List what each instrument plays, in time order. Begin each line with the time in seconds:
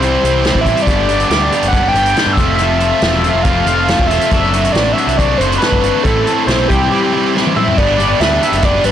Already playing: picked electric bass C2, analog synth lead C5
0.02 distorted electric guitar C3 E3 G3 C4 E4, overdriven electric guitar G4, closed hi-hat
0.24 picked electric bass C2, distorted electric guitar C3 E3 G3 C4 E4, overdriven electric guitar G4, closed hi-hat
0.44 distorted electric guitar C3 E3 G3 C4 E4, overdriven electric guitar G4, snare, closed hi-hat
0.54 picked electric bass A1, kick
0.61 analog synth lead E5
0.66 distorted electric guitar C3 E3 G3 C4 E4, overdriven electric guitar G4, kick, closed hi-hat
0.77 closed hi-hat
0.82 analog synth lead D5
0.87 picked electric bass G1, distorted electric guitar G2 D3 G3 B3 D4 G4, kick, closed hi-hat
1.09 distorted electric guitar G2 D3 G3 B3 D4 G4, closed hi-hat
1.20 closed hi-hat
1.24 analog synth lead D5
1.30 picked electric bass D2, distorted electric guitar G2 D3 G3 B3 D4 G4, snare, closed hi-hat
1.51 distorted electric guitar G2 D3 G3 B3 D4 G4, closed hi-hat
1.63 picked electric bass F#1, closed hi-hat
1.68 analog synth lead F#5
1.73 distorted electric guitar G2 D3 G3 B3 D4 G4, kick, closed hi-hat
1.89 analog synth lead G5
1.94 picked electric bass G1, distorted electric guitar G2 D3 G3 B3 D4 G4, closed hi-hat
2.06 closed hi-hat
2.16 distorted electric guitar G2 D3 G3 B3 D4 G4, snare, closed hi-hat
2.26 picked electric bass G2
2.33 analog synth lead E5
2.37 picked electric bass F1, distorted electric guitar F2 C3 F3 A3 C4 F4, overdriven electric guitar A4, kick, snare, closed hi-hat
2.56 distorted electric guitar F2, overdriven electric guitar A4, analog synth lead E5, closed hi-hat
2.60 distorted electric guitar C3 F3 A3 C4 F4
2.80 distorted electric guitar F2 C3 F3 A3 C4 F4, overdriven electric guitar A4, closed hi-hat
3.01 picked electric bass E1, distorted electric guitar F2 C3 F3 A3 C4 F4, overdriven electric guitar A4, snare, closed hi-hat
3.23 distorted electric guitar F2 C3 F3 A3 C4 F4, overdriven electric guitar A4, closed hi-hat
3.34 picked electric bass F1
3.43 distorted electric guitar F2 C3 A3, overdriven electric guitar A4, analog synth lead F5, kick, closed hi-hat
3.48 distorted electric guitar F3 C4 F4
3.65 picked electric bass F1, distorted electric guitar F2 C3 F3, overdriven electric guitar A4, closed hi-hat
3.69 distorted electric guitar A3 C4 F4
3.88 distorted electric guitar F2 C3 F3 A3 C4 F4, overdriven electric guitar A4, snare, closed hi-hat
4.00 picked electric bass E1, kick
4.07 distorted electric guitar F2 C3, analog synth lead E5, closed hi-hat
4.11 distorted electric guitar F3 A3 C4 F4, overdriven electric guitar A4, snare
4.21 closed hi-hat
4.31 picked electric bass F#1, distorted electric guitar F#3 A3 D4 F#4, overdriven electric guitar C4 A4, kick, closed hi-hat
4.53 distorted electric guitar F#3 A3 D4 F#4, overdriven electric guitar C4 A4, closed hi-hat
4.65 closed hi-hat
4.72 picked electric bass A1, distorted electric guitar F#3 A3, overdriven electric guitar C4 A4, analog synth lead D5, snare, closed hi-hat
4.76 distorted electric guitar D4 F#4
4.93 distorted electric guitar F#3, analog synth lead E5
4.97 distorted electric guitar A3 D4 F#4, overdriven electric guitar C4 A4, closed hi-hat
5.07 picked electric bass C2, closed hi-hat
5.17 distorted electric guitar F#3 A3 D4 F#4, overdriven electric guitar C4 A4, analog synth lead D5, kick, closed hi-hat
5.38 picked electric bass F#1, distorted electric guitar F#3 A3 D4 F#4, overdriven electric guitar C4 A4, analog synth lead C5, closed hi-hat
5.52 closed hi-hat
5.58 distorted electric guitar F#3, overdriven electric guitar C4 A4, analog synth lead B4, closed hi-hat
5.62 distorted electric guitar A3 D4 F#4, snare
5.72 picked electric bass G1, kick
5.82 distorted electric guitar F#3 A3 D4 F#4, overdriven electric guitar C4 A4, closed hi-hat
6.04 picked electric bass A1, distorted electric guitar A2 E3 A3 C4 E4, analog synth lead A4, overdriven electric guitar A4, kick, closed hi-hat
6.27 distorted electric guitar A2 E3 A3 C4 E4, overdriven electric guitar A4, closed hi-hat
6.47 picked electric bass B1, distorted electric guitar A2 E3 A3 C4 E4, overdriven electric guitar A4, analog synth lead C5, snare, closed hi-hat
6.68 picked electric bass C2, distorted electric guitar C3 E3 G3 C4 E4, analog synth lead G4, kick, closed hi-hat
6.91 distorted electric guitar C3 E3 G3 C4 E4
7.12 distorted electric guitar C3 E3 G3 C4 E4
7.35 distorted electric guitar C3 E3 G3 C4 E4, snare
7.47 high tom
7.56 distorted electric guitar C3 E3 G3 C4 E4, analog synth lead E5, mid tom
7.68 floor tom
7.77 picked electric bass G1, distorted electric guitar G3 B3 D4 B4, overdriven electric guitar G4, analog synth lead D5, kick, crash
7.99 distorted electric guitar G3 B3 D4 B4, overdriven electric guitar G4, closed hi-hat
8.20 picked electric bass D2, distorted electric guitar G3 B3 D4 B4, overdriven electric guitar G4, analog synth lead E5, snare, closed hi-hat
8.42 distorted electric guitar G3 B3 D4 B4, overdriven electric guitar G4, closed hi-hat
8.52 picked electric bass F#1, closed hi-hat
8.62 distorted electric guitar G3 B3 D4 B4, overdriven electric guitar G4, analog synth lead D5, kick, closed hi-hat
8.84 picked electric bass G1, distorted electric guitar G3 B3 D4 B4, overdriven electric guitar G4, analog synth lead B4, closed hi-hat